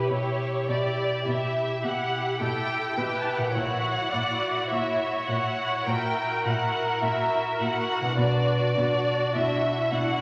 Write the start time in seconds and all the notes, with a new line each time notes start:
Already playing: B2 E4 G4 B4
0.10 B2 E4 G4 C#5
0.68 B2 E4 G4 D5
1.27 B2 E4 G4 E5
1.84 B2 E4 G4 F#5
2.41 B2 E4 G4 A4 G5
2.97 B2 E4 G4 B4
3.21 A5
3.30 G5
3.38 A#2 F#5
3.42 E4
3.47 F#4 G5
3.51 E4 C#5
3.55 A#1 A#2 F#4 C#5 F#5
4.13 A#2 E4 F#4 D5
4.70 A#2 E4 F#4 C#5 E5
5.27 A#2 E4 F#4 F#5
5.86 A#2 E4 F#4 A#4 G5
6.43 A#2 E4 F#4 F#5
7.02 A#2 E4 F#4 E5
7.60 A#2 E4 F#4 F#5
8.01 B2 D4
8.09 F#4
8.14 D4 F#4 B4
8.18 B1 B2 F#4 D5
8.76 B2 D4 F#4
9.34 B2 D4 E4 F#4 E5
9.91 B2 D4 F#4 F#5